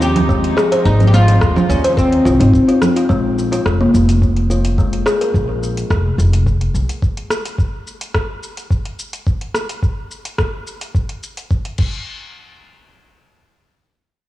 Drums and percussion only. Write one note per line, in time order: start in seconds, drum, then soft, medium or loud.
0.02 shaker medium
0.16 closed hi-hat medium
0.16 low conga medium
0.16 shaker soft
0.29 kick loud
0.29 shaker soft
0.44 closed hi-hat soft
0.58 cross-stick medium
0.58 shaker medium
0.72 closed hi-hat medium
0.72 shaker soft
0.85 kick loud
0.85 shaker soft
1.00 closed hi-hat soft
1.00 low conga medium
1.00 shaker soft
1.14 shaker medium
1.28 closed hi-hat medium
1.28 shaker soft
1.41 kick loud
1.41 cross-stick medium
1.41 shaker soft
1.56 low conga medium
1.56 shaker soft
1.70 shaker medium
1.84 closed hi-hat medium
1.84 shaker soft
1.97 kick loud
1.97 shaker soft
2.12 closed hi-hat soft
2.26 shaker medium
2.41 closed hi-hat medium
2.41 shaker soft
2.54 kick loud
2.54 shaker soft
2.69 closed hi-hat soft
2.69 shaker soft
2.82 cross-stick medium
2.82 low conga medium
2.82 shaker medium
2.96 closed hi-hat medium
2.96 shaker soft
3.10 kick loud
3.10 shaker soft
3.39 shaker medium
3.53 closed hi-hat medium
3.53 shaker soft
3.66 kick loud
3.66 cross-stick medium
3.66 shaker soft
3.95 shaker medium
4.09 closed hi-hat medium
4.09 shaker soft
4.22 kick medium
4.22 shaker soft
4.37 closed hi-hat soft
4.51 shaker medium
4.65 closed hi-hat medium
4.65 shaker soft
4.78 kick loud
4.78 shaker soft
4.93 closed hi-hat soft
5.06 cross-stick medium
5.06 shaker medium
5.21 closed hi-hat medium
5.21 shaker soft
5.34 kick loud
5.34 shaker soft
5.63 shaker medium
5.77 closed hi-hat medium
5.77 shaker soft
5.90 kick loud
5.90 cross-stick medium
5.90 shaker soft
6.19 shaker medium
6.33 closed hi-hat medium
6.33 shaker soft
6.46 kick loud
6.46 shaker soft
6.61 closed hi-hat soft
6.75 shaker medium
6.89 closed hi-hat medium
6.89 shaker soft
7.02 kick loud
7.02 shaker soft
7.17 closed hi-hat soft
7.30 cross-stick medium
7.30 shaker medium
7.45 closed hi-hat soft
7.45 shaker soft
7.58 kick medium
7.58 shaker soft
7.87 shaker medium
8.01 closed hi-hat soft
8.01 shaker soft
8.14 kick loud
8.14 cross-stick medium
8.14 shaker soft
8.43 shaker medium
8.57 closed hi-hat soft
8.57 shaker soft
8.71 kick loud
8.71 shaker soft
8.85 closed hi-hat soft
8.99 shaker medium
9.13 closed hi-hat medium
9.13 shaker soft
9.27 kick loud
9.27 shaker soft
9.41 closed hi-hat soft
9.55 cross-stick medium
9.55 shaker medium
9.69 closed hi-hat soft
9.69 shaker soft
9.83 kick loud
9.83 shaker soft
10.11 shaker medium
10.25 closed hi-hat soft
10.25 shaker soft
10.38 kick loud
10.38 cross-stick medium
10.38 shaker soft
10.67 shaker medium
10.81 closed hi-hat soft
10.81 shaker soft
10.95 kick medium
10.95 shaker soft
11.09 closed hi-hat soft
11.23 shaker medium
11.37 closed hi-hat soft
11.37 shaker soft
11.51 kick medium
11.51 shaker soft
11.65 closed hi-hat soft
11.78 kick loud
11.78 crash medium